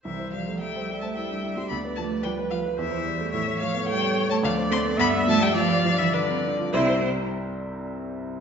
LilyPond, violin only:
\new Staff \with { instrumentName = "Violin" } { \time 3/4 \key c \major \tempo 4 = 108 e''8 f''8 g''8. a''16 g''8. c'''16 | b''8 a''8 g''8 f''8 e''4 | e''8 f''8 g''8. a''16 f''8 c'''8 | b''8 a''16 g''16 f''8. e''16 d''4 |
c''8 r2 r8 | }